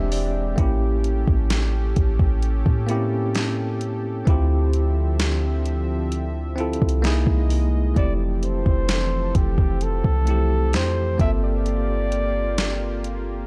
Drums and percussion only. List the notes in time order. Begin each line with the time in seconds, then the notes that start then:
0.12 open hi-hat
0.58 kick, closed hi-hat
1.04 closed hi-hat
1.28 kick
1.50 snare, closed hi-hat
1.96 kick, closed hi-hat
2.19 kick
2.42 closed hi-hat
2.66 kick
2.89 closed hi-hat
3.35 snare, closed hi-hat
3.81 closed hi-hat
4.27 kick, closed hi-hat
4.73 closed hi-hat
5.19 snare, closed hi-hat
5.66 closed hi-hat
6.12 closed hi-hat
6.58 closed hi-hat
6.73 closed hi-hat
6.82 kick
6.89 closed hi-hat
7.04 snare, closed hi-hat
7.27 kick
7.50 open hi-hat
7.96 kick, closed hi-hat
8.43 closed hi-hat
8.66 kick
8.89 snare, closed hi-hat
9.35 kick, closed hi-hat
9.58 kick
9.81 closed hi-hat
10.04 kick
10.27 closed hi-hat
10.73 snare, closed hi-hat
11.19 kick, closed hi-hat
11.66 closed hi-hat
12.12 closed hi-hat
12.58 snare, closed hi-hat
13.04 closed hi-hat